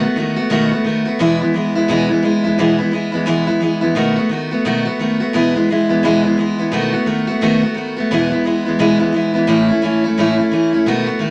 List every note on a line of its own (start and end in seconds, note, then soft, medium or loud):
0.02 0.16 A3 soft
0.02 0.17 B3 medium
0.02 0.16 F#4 medium
0.16 0.37 D#3 medium
0.16 0.38 A3 medium
0.16 0.37 B3 medium
0.16 0.35 F#4 medium
0.36 0.50 A3 medium
0.36 0.50 B3 medium
0.36 0.51 F#4 medium
0.50 0.71 B2 medium
0.50 0.72 D#3 medium
0.50 0.72 A3 loud
0.50 0.72 B3 loud
0.50 0.70 F#4 loud
0.71 0.85 A3 soft
0.71 0.86 B3 medium
0.71 0.85 F#4 medium
0.84 1.06 D#3 medium
0.84 1.07 A3 medium
0.84 1.06 B3 medium
0.84 1.04 F#4 medium
1.05 1.20 A3 medium
1.05 1.20 B3 medium
1.05 1.19 F#4 medium
1.19 1.40 E2 medium
1.19 1.41 B2 loud
1.19 1.41 E3 loud
1.19 1.41 G#3 loud
1.19 1.40 B3 loud
1.19 1.39 E4 loud
1.40 1.53 E3 soft
1.40 1.54 G#3 medium
1.40 1.55 B3 medium
1.40 1.54 E4 medium
1.54 1.75 E3 medium
1.54 1.76 G#3 medium
1.54 1.75 B3 medium
1.54 1.74 E4 medium
1.75 1.88 E3 medium
1.75 1.89 G#3 medium
1.75 1.89 B3 medium
1.75 1.89 E4 medium
1.88 2.09 E2 medium
1.88 2.10 B2 loud
1.88 2.10 E3 medium
1.88 2.10 G#3 medium
1.88 2.09 B3 loud
1.88 2.08 E4 loud
2.09 2.21 E3 medium
2.09 2.22 G#3 medium
2.09 2.24 B3 medium
2.09 2.23 E4 medium
2.22 2.44 E3 medium
2.22 2.44 G#3 medium
2.22 2.44 B3 medium
2.22 2.43 E4 medium
2.44 2.58 E3 soft
2.44 2.58 G#3 medium
2.44 2.58 B3 medium
2.44 2.58 E4 medium
2.58 2.79 E2 medium
2.58 2.79 B2 medium
2.58 2.79 E3 loud
2.58 2.79 G#3 medium
2.58 2.79 B3 medium
2.58 2.77 E4 loud
2.79 2.90 E3 soft
2.79 2.92 G#3 medium
2.79 2.93 B3 medium
2.79 2.92 E4 medium
2.92 3.13 E3 medium
2.92 3.13 G#3 medium
2.92 3.13 B3 medium
2.92 3.11 E4 medium
3.12 3.26 E3 soft
3.12 3.26 G#3 soft
3.12 3.27 B3 medium
3.12 3.26 E4 medium
3.26 3.47 E2 medium
3.26 3.47 B2 medium
3.26 3.48 E3 loud
3.26 3.48 G#3 loud
3.26 3.47 B3 loud
3.26 3.46 E4 loud
3.47 3.59 E3 medium
3.47 3.61 G#3 medium
3.47 3.61 B3 medium
3.47 3.61 E4 medium
3.60 3.82 E3 medium
3.60 3.82 G#3 medium
3.60 3.81 B3 medium
3.60 3.80 E4 medium
3.81 3.96 E3 soft
3.81 3.96 G#3 medium
3.81 3.96 B3 medium
3.81 3.95 E4 medium
3.95 4.16 B2 medium
3.95 4.17 D#3 medium
3.95 4.17 A3 medium
3.95 4.17 B3 loud
3.95 4.15 F#4 loud
4.16 4.30 A3 medium
4.16 4.30 B3 medium
4.16 4.30 F#4 medium
4.29 4.51 D#3 medium
4.29 4.51 A3 medium
4.29 4.51 B3 medium
4.29 4.50 F#4 medium
4.51 4.65 A3 medium
4.51 4.65 B3 medium
4.51 4.65 F#4 medium
4.65 4.86 B2 medium
4.65 4.86 D#3 medium
4.65 4.86 A3 medium
4.65 4.86 B3 loud
4.65 4.84 F#4 loud
4.85 4.99 A3 soft
4.85 5.00 B3 medium
4.85 4.99 F#4 medium
4.99 5.20 D#3 medium
4.99 5.21 A3 medium
4.99 5.21 B3 medium
4.99 5.19 F#4 medium
5.20 5.34 A3 soft
5.20 5.34 B3 medium
5.20 5.34 F#4 medium
5.33 5.54 E2 medium
5.33 5.55 B2 medium
5.33 5.55 E3 loud
5.33 5.55 G#3 loud
5.33 5.54 B3 loud
5.33 5.53 E4 loud
5.54 5.68 E3 medium
5.54 5.69 G#3 medium
5.54 5.69 B3 medium
5.54 5.68 E4 medium
5.69 5.90 E3 medium
5.69 5.90 G#3 medium
5.69 5.89 B3 medium
5.69 5.88 E4 medium
5.89 6.03 E3 soft
5.89 6.04 G#3 soft
5.89 6.03 B3 medium
5.89 6.03 E4 medium
6.03 6.24 E2 medium
6.03 6.24 B2 medium
6.03 6.25 E3 loud
6.03 6.25 G#3 loud
6.03 6.24 B3 loud
6.03 6.22 E4 loud
6.24 6.36 E3 medium
6.24 6.38 G#3 medium
6.24 6.38 B3 medium
6.24 6.37 E4 medium
6.37 6.58 E3 medium
6.37 6.59 G#3 medium
6.37 6.58 B3 medium
6.37 6.57 E4 medium
6.58 6.72 E3 soft
6.58 6.73 G#3 soft
6.58 6.73 B3 medium
6.58 6.72 E4 medium
6.72 6.93 B2 medium
6.72 6.93 D#3 medium
6.72 6.94 A3 loud
6.72 6.93 B3 loud
6.72 6.91 F#4 medium
6.93 7.06 A3 medium
6.93 7.07 B3 medium
6.93 7.06 F#4 medium
7.06 7.27 D#3 medium
7.06 7.28 A3 medium
7.06 7.28 B3 medium
7.06 7.26 F#4 medium
7.27 7.41 A3 medium
7.27 7.42 B3 medium
7.27 7.41 F#4 medium
7.41 7.62 B2 medium
7.41 7.63 D#3 medium
7.41 7.63 A3 loud
7.41 7.63 B3 loud
7.41 7.61 F#4 loud
7.62 7.75 A3 medium
7.62 7.76 B3 soft
7.62 7.76 F#4 medium
7.75 7.96 D#3 medium
7.75 7.97 A3 medium
7.75 7.97 B3 medium
7.75 7.95 F#4 medium
7.96 8.12 A3 soft
7.96 8.11 B3 medium
7.96 8.10 F#4 medium
8.11 8.32 E2 medium
8.11 8.32 B2 medium
8.11 8.32 E3 medium
8.11 8.31 G#3 medium
8.11 8.31 B3 medium
8.11 8.29 E4 loud
8.31 8.43 E3 soft
8.31 8.44 G#3 medium
8.31 8.45 B3 medium
8.31 8.45 E4 medium
8.44 8.65 E3 medium
8.44 8.66 G#3 medium
8.44 8.65 B3 medium
8.44 8.64 E4 medium
8.65 8.78 E3 medium
8.65 8.79 G#3 medium
8.65 8.79 B3 medium
8.65 8.79 E4 medium
8.79 9.00 E2 medium
8.79 9.00 B2 medium
8.79 9.00 E3 medium
8.79 9.00 G#3 loud
8.79 8.99 B3 loud
8.79 8.98 E4 loud
8.99 9.11 E3 soft
8.99 9.13 G#3 soft
8.99 9.14 B3 medium
8.99 9.13 E4 medium
9.12 9.34 E3 medium
9.12 9.35 G#3 medium
9.12 9.34 B3 medium
9.16 9.33 E4 medium
9.34 9.46 E3 medium
9.34 9.48 G#3 medium
9.34 9.48 B3 medium
9.34 9.48 E4 medium
9.47 9.69 A2 loud
9.47 9.69 E3 medium
9.47 9.69 A3 medium
9.47 9.69 C#4 loud
9.47 9.67 E4 loud
9.68 9.82 A3 medium
9.68 9.83 C#4 medium
9.68 9.82 E4 medium
9.82 10.03 E3 medium
9.82 10.04 A3 medium
9.82 10.04 C#4 medium
9.82 10.03 E4 medium
10.04 10.18 A3 medium
10.04 10.18 C#4 medium
10.04 10.18 E4 medium
10.18 10.39 A2 medium
10.18 10.39 E3 medium
10.18 10.39 A3 medium
10.18 10.38 C#4 medium
10.18 10.37 E4 loud
10.38 10.52 A3 medium
10.38 10.52 C#4 medium
10.38 10.52 E4 medium
10.51 10.73 E3 medium
10.51 10.73 A3 medium
10.51 10.73 C#4 medium
10.51 10.72 E4 medium
10.73 10.86 A3 medium
10.73 10.87 C#4 medium
10.73 10.86 E4 medium
10.86 11.07 B2 medium
10.86 11.08 D#3 medium
10.86 11.08 A3 loud
10.86 11.07 B3 loud
10.86 11.05 F#4 loud
11.06 11.19 A3 soft
11.06 11.20 B3 medium
11.06 11.21 F#4 medium
11.19 11.30 D#3 medium
11.19 11.30 A3 medium
11.19 11.30 B3 medium
11.19 11.30 F#4 medium